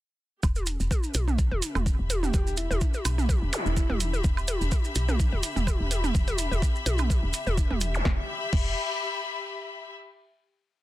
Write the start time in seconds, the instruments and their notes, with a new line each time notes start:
0.43 fm bass E1, string section G4, kick, high woodblock, maracas
0.56 high tom, maracas
0.66 closed hi-hat, maracas
0.75 string section B5
0.80 fm bass E1, maracas
0.91 kick, high tom, maracas
1.02 string section E5, maracas
1.14 fm bass B1, closed hi-hat, high tom, maracas
1.28 mid tom, maracas
1.38 kick, maracas
1.51 fm bass E1, high tom
1.62 closed hi-hat, maracas
1.75 fm bass E1, mid tom, high tom, high woodblock, maracas
1.86 kick, maracas
1.99 fm bass E1
2.10 closed hi-hat, high tom, maracas
2.23 soft synth lead G4, mid tom, maracas
2.34 fm bass E1, kick, high tom, maracas
2.47 maracas
2.57 soft synth lead E4, closed hi-hat, maracas
2.71 fm bass E1, soft synth lead E4, high tom, maracas
2.81 kick, maracas
2.94 high tom, maracas
3.05 fm bass B1, closed hi-hat, high woodblock, maracas
3.18 mid tom, maracas
3.29 kick, high tom, maracas
3.42 fm bass E1
3.53 closed hi-hat, high tom, zap, maracas
3.66 fm bass E1, soft synth lead E4, maracas
3.77 kick, maracas
3.90 fm bass E1, mid tom, high tom
4.00 closed hi-hat, maracas
4.13 high tom, maracas
4.24 fm bass E1, kick, maracas
4.37 high woodblock, maracas
4.48 closed hi-hat, high tom, maracas
4.61 fm bass E1, maracas
4.71 kick, high tom, maracas
4.84 maracas
4.95 fm bass B1, closed hi-hat, maracas
5.09 mid tom, high tom, maracas
5.19 kick, maracas
5.32 fm bass E1, high tom
5.43 closed hi-hat, maracas
5.56 fm bass E1, mid tom, maracas
5.67 kick, high tom, high woodblock, maracas
5.80 fm bass E1
5.91 closed hi-hat, high tom, maracas
6.04 mid tom, maracas
6.15 fm bass E1, kick, maracas
6.28 closed hi-hat, high tom, maracas
6.38 closed hi-hat, maracas
6.52 fm bass E1, high tom, maracas
6.62 kick, maracas
6.75 maracas
6.86 fm bass B1, closed hi-hat, high tom, maracas
6.98 mid tom, high woodblock, maracas
7.10 kick, high tom, maracas
7.23 fm bass E1
7.33 closed hi-hat, maracas
7.47 fm bass E1, high tom, maracas
7.58 kick, maracas
7.71 fm bass E1, mid tom, high tom
7.81 closed hi-hat, maracas
7.94 zap, maracas
8.05 fm bass E1, string section G4, kick, snare
8.13 string section E5
8.20 string section B5
8.53 fm bass E1, kick, crash